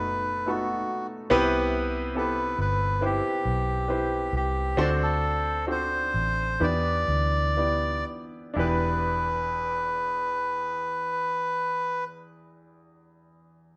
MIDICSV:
0, 0, Header, 1, 4, 480
1, 0, Start_track
1, 0, Key_signature, 1, "minor"
1, 0, Tempo, 849858
1, 741, Time_signature, 4, 2, 24, 8
1, 1706, Tempo, 886263
1, 3146, Tempo, 947867
1, 4106, Tempo, 986842
1, 7117, End_track
2, 0, Start_track
2, 0, Title_t, "Melodica"
2, 0, Program_c, 0, 22
2, 0, Note_on_c, 0, 71, 95
2, 274, Note_on_c, 0, 66, 85
2, 288, Note_off_c, 0, 71, 0
2, 604, Note_off_c, 0, 66, 0
2, 1233, Note_on_c, 0, 71, 91
2, 1466, Note_off_c, 0, 71, 0
2, 1474, Note_on_c, 0, 71, 95
2, 1719, Note_off_c, 0, 71, 0
2, 1723, Note_on_c, 0, 67, 99
2, 2426, Note_off_c, 0, 67, 0
2, 2434, Note_on_c, 0, 67, 102
2, 2671, Note_on_c, 0, 74, 108
2, 2673, Note_off_c, 0, 67, 0
2, 2722, Note_off_c, 0, 74, 0
2, 2791, Note_on_c, 0, 69, 107
2, 3132, Note_off_c, 0, 69, 0
2, 3165, Note_on_c, 0, 72, 111
2, 3630, Note_on_c, 0, 74, 102
2, 3641, Note_off_c, 0, 72, 0
2, 4333, Note_off_c, 0, 74, 0
2, 4604, Note_on_c, 0, 71, 92
2, 6280, Note_off_c, 0, 71, 0
2, 7117, End_track
3, 0, Start_track
3, 0, Title_t, "Grand piano"
3, 0, Program_c, 1, 0
3, 0, Control_c, 1, 64, 127
3, 0, Note_on_c, 1, 57, 73
3, 0, Note_on_c, 1, 59, 64
3, 0, Note_on_c, 1, 63, 69
3, 0, Note_on_c, 1, 66, 64
3, 0, Note_on_c, 1, 69, 79
3, 0, Note_on_c, 1, 71, 82
3, 237, Note_off_c, 1, 57, 0
3, 237, Note_off_c, 1, 59, 0
3, 239, Note_off_c, 1, 63, 0
3, 241, Note_off_c, 1, 66, 0
3, 242, Note_off_c, 1, 69, 0
3, 261, Note_on_c, 1, 57, 66
3, 265, Note_on_c, 1, 59, 61
3, 266, Note_on_c, 1, 63, 60
3, 269, Note_on_c, 1, 66, 63
3, 269, Note_on_c, 1, 69, 74
3, 716, Note_off_c, 1, 57, 0
3, 717, Note_off_c, 1, 59, 0
3, 718, Note_off_c, 1, 63, 0
3, 720, Note_off_c, 1, 66, 0
3, 720, Note_off_c, 1, 69, 0
3, 734, Note_on_c, 1, 59, 111
3, 736, Note_on_c, 1, 60, 110
3, 737, Note_on_c, 1, 48, 77
3, 738, Note_on_c, 1, 64, 110
3, 739, Note_on_c, 1, 67, 106
3, 741, Note_off_c, 1, 71, 0
3, 741, Note_on_c, 1, 71, 125
3, 749, Control_c, 1, 64, 0
3, 862, Control_c, 1, 64, 127
3, 1194, Note_off_c, 1, 59, 0
3, 1195, Note_off_c, 1, 60, 0
3, 1196, Note_off_c, 1, 64, 0
3, 1196, Note_off_c, 1, 67, 0
3, 1197, Note_off_c, 1, 71, 0
3, 1215, Note_on_c, 1, 59, 74
3, 1216, Note_on_c, 1, 60, 61
3, 1219, Note_on_c, 1, 64, 68
3, 1223, Note_on_c, 1, 67, 69
3, 1223, Note_on_c, 1, 69, 86
3, 1439, Note_off_c, 1, 48, 0
3, 1680, Note_off_c, 1, 59, 0
3, 1680, Note_off_c, 1, 60, 0
3, 1682, Note_off_c, 1, 64, 0
3, 1684, Note_off_c, 1, 67, 0
3, 1684, Note_off_c, 1, 69, 0
3, 1700, Note_on_c, 1, 71, 67
3, 1703, Note_on_c, 1, 64, 71
3, 1704, Note_on_c, 1, 60, 62
3, 1706, Note_on_c, 1, 67, 66
3, 1708, Note_on_c, 1, 72, 75
3, 2151, Note_off_c, 1, 71, 0
3, 2153, Note_off_c, 1, 60, 0
3, 2153, Note_off_c, 1, 64, 0
3, 2154, Note_off_c, 1, 67, 0
3, 2155, Note_off_c, 1, 72, 0
3, 2173, Note_on_c, 1, 71, 65
3, 2176, Note_on_c, 1, 60, 60
3, 2179, Note_on_c, 1, 64, 62
3, 2181, Note_on_c, 1, 67, 64
3, 2182, Note_on_c, 1, 72, 78
3, 2630, Note_off_c, 1, 71, 0
3, 2632, Note_off_c, 1, 60, 0
3, 2633, Note_off_c, 1, 64, 0
3, 2634, Note_off_c, 1, 67, 0
3, 2635, Note_off_c, 1, 72, 0
3, 2654, Note_on_c, 1, 60, 104
3, 2656, Note_on_c, 1, 62, 96
3, 2657, Note_on_c, 1, 50, 62
3, 2659, Note_on_c, 1, 66, 89
3, 2660, Note_on_c, 1, 69, 92
3, 2661, Note_on_c, 1, 72, 113
3, 2664, Control_c, 1, 64, 0
3, 2770, Control_c, 1, 64, 127
3, 3121, Note_off_c, 1, 60, 0
3, 3121, Note_off_c, 1, 62, 0
3, 3123, Note_off_c, 1, 66, 0
3, 3124, Note_off_c, 1, 69, 0
3, 3124, Note_off_c, 1, 72, 0
3, 3141, Note_on_c, 1, 60, 72
3, 3144, Note_on_c, 1, 62, 67
3, 3145, Note_on_c, 1, 66, 64
3, 3146, Note_on_c, 1, 69, 69
3, 3148, Note_on_c, 1, 72, 74
3, 3361, Note_off_c, 1, 50, 0
3, 3592, Note_off_c, 1, 60, 0
3, 3593, Note_off_c, 1, 62, 0
3, 3593, Note_off_c, 1, 66, 0
3, 3594, Note_off_c, 1, 69, 0
3, 3595, Note_off_c, 1, 72, 0
3, 3612, Note_on_c, 1, 59, 72
3, 3613, Note_on_c, 1, 62, 63
3, 3614, Note_on_c, 1, 64, 66
3, 3615, Note_on_c, 1, 52, 60
3, 3617, Note_on_c, 1, 67, 64
3, 3619, Note_on_c, 1, 71, 79
3, 3626, Control_c, 1, 64, 0
3, 3703, Control_c, 1, 64, 127
3, 4079, Note_off_c, 1, 59, 0
3, 4079, Note_off_c, 1, 62, 0
3, 4080, Note_off_c, 1, 64, 0
3, 4081, Note_off_c, 1, 67, 0
3, 4082, Note_off_c, 1, 71, 0
3, 4102, Note_on_c, 1, 59, 65
3, 4104, Note_on_c, 1, 62, 61
3, 4105, Note_on_c, 1, 64, 60
3, 4108, Note_on_c, 1, 67, 58
3, 4110, Note_on_c, 1, 74, 67
3, 4326, Note_off_c, 1, 52, 0
3, 4563, Note_off_c, 1, 59, 0
3, 4563, Note_off_c, 1, 62, 0
3, 4564, Note_off_c, 1, 64, 0
3, 4565, Note_off_c, 1, 67, 0
3, 4566, Note_off_c, 1, 74, 0
3, 4573, Note_on_c, 1, 62, 87
3, 4583, Note_on_c, 1, 64, 80
3, 4588, Note_on_c, 1, 40, 78
3, 4591, Note_on_c, 1, 67, 80
3, 4595, Control_c, 1, 64, 0
3, 4601, Note_on_c, 1, 71, 90
3, 4689, Control_c, 1, 64, 127
3, 6249, Note_off_c, 1, 62, 0
3, 6259, Note_off_c, 1, 64, 0
3, 6264, Note_off_c, 1, 40, 0
3, 6267, Note_off_c, 1, 67, 0
3, 6277, Note_off_c, 1, 71, 0
3, 7117, End_track
4, 0, Start_track
4, 0, Title_t, "Fingered electric bass"
4, 0, Program_c, 2, 33
4, 0, Note_on_c, 2, 30, 81
4, 480, Note_off_c, 2, 30, 0
4, 739, Note_on_c, 2, 36, 95
4, 1440, Note_off_c, 2, 36, 0
4, 1460, Note_on_c, 2, 31, 82
4, 1801, Note_off_c, 2, 31, 0
4, 1940, Note_on_c, 2, 35, 84
4, 2394, Note_off_c, 2, 35, 0
4, 2414, Note_on_c, 2, 36, 90
4, 2639, Note_off_c, 2, 36, 0
4, 2656, Note_on_c, 2, 38, 99
4, 3361, Note_off_c, 2, 38, 0
4, 3380, Note_on_c, 2, 33, 78
4, 3601, Note_off_c, 2, 33, 0
4, 3616, Note_on_c, 2, 40, 101
4, 3842, Note_off_c, 2, 40, 0
4, 3857, Note_on_c, 2, 38, 92
4, 4327, Note_off_c, 2, 38, 0
4, 4586, Note_on_c, 2, 28, 92
4, 6262, Note_off_c, 2, 28, 0
4, 7117, End_track
0, 0, End_of_file